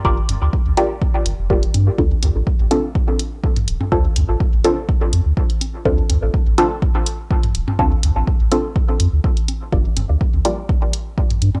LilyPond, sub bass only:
\new Staff \with { instrumentName = "Sub bass" } { \clef bass \time 4/4 \key d \minor \tempo 4 = 124 g,,16 r16 g,,16 d,16 r16 d,16 r4 g,,16 f,,8 r16 g,16 r16 | d,16 r16 d,16 a,,16 r16 a,,16 r2 d,,16 r16 | d,16 r16 d,16 a,,16 r16 a,,16 r4 f,16 d,16 r4 | d,16 r16 d,16 a,,16 r16 a,,16 r2 d,,16 r16 |
d,16 r16 d,16 a,,16 r16 a,,16 r4 f,16 d,16 r4 | g,,16 r16 g,,16 d,16 r16 d,16 r2 g,16 r16 | }